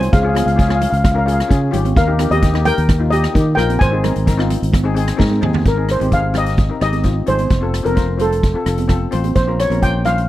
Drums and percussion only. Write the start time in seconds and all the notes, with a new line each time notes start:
0.01 closed hi-hat, high conga
0.13 kick, closed hi-hat
0.35 cross-stick, closed hi-hat, high conga
0.48 closed hi-hat
0.59 kick, closed hi-hat
0.70 cross-stick, high conga
0.81 closed hi-hat, low conga
0.93 closed hi-hat
1.05 kick, cross-stick, closed hi-hat
1.28 closed hi-hat
1.40 cross-stick, closed hi-hat
1.51 kick, closed hi-hat
1.73 closed hi-hat, low conga
1.85 closed hi-hat, high conga
1.96 kick, closed hi-hat
2.19 cross-stick, closed hi-hat, high conga
2.32 closed hi-hat
2.43 kick, closed hi-hat
2.54 cross-stick, high conga
2.65 closed hi-hat, low conga
2.78 closed hi-hat
2.89 kick, cross-stick, closed hi-hat
3.12 closed hi-hat
3.24 cross-stick, closed hi-hat
3.35 kick, closed hi-hat
3.58 cross-stick, closed hi-hat, low conga
3.70 closed hi-hat, high conga
3.81 kick, closed hi-hat
4.04 cross-stick, closed hi-hat, high conga, low conga
4.16 closed hi-hat
4.27 kick, closed hi-hat
4.39 cross-stick, high conga
4.50 closed hi-hat, low conga
4.63 closed hi-hat
4.73 kick, cross-stick, closed hi-hat, high conga
4.96 closed hi-hat
5.08 cross-stick, closed hi-hat
5.19 kick, snare, low conga
5.30 high conga
5.42 mid tom, low conga
5.53 floor tom, high conga
5.65 kick, closed hi-hat
5.89 cross-stick, closed hi-hat
6.00 closed hi-hat, high conga
6.12 kick, closed hi-hat
6.34 cross-stick, closed hi-hat, low conga
6.46 closed hi-hat
6.57 kick, closed hi-hat
6.81 cross-stick, closed hi-hat
6.93 closed hi-hat, high conga
7.04 kick, closed hi-hat
7.27 closed hi-hat, low conga
7.39 closed hi-hat, high conga
7.50 kick, closed hi-hat
7.74 cross-stick, closed hi-hat
7.86 closed hi-hat, high conga
7.97 kick, closed hi-hat
8.19 closed hi-hat, low conga
8.32 closed hi-hat
8.43 kick, closed hi-hat
8.66 cross-stick, closed hi-hat
8.78 closed hi-hat, high conga
8.89 kick, cross-stick, closed hi-hat
9.12 closed hi-hat, low conga
9.24 closed hi-hat, high conga
9.35 kick, closed hi-hat
9.60 cross-stick, closed hi-hat
9.70 closed hi-hat, high conga
9.82 kick, closed hi-hat
10.05 cross-stick, closed hi-hat, low conga
10.18 closed hi-hat